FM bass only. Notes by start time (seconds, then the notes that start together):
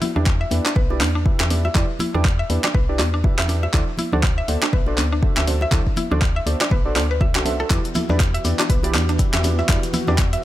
0.16 E2
0.51 E2
0.76 B1
1.01 E2
1.40 E2
1.75 E2
2.15 E2
2.50 E2
2.75 B1
2.99 E2
3.39 E2
3.74 D2
4.13 D2
4.48 D2
4.73 A1
4.98 D2
5.37 D2
5.72 D2
6.11 D2
6.46 D2
6.71 A1
6.96 D2
7.35 C2
7.70 E2
8.09 E2
8.45 E2
8.70 B1
8.94 E2
9.34 E2
9.69 E2
10.08 E2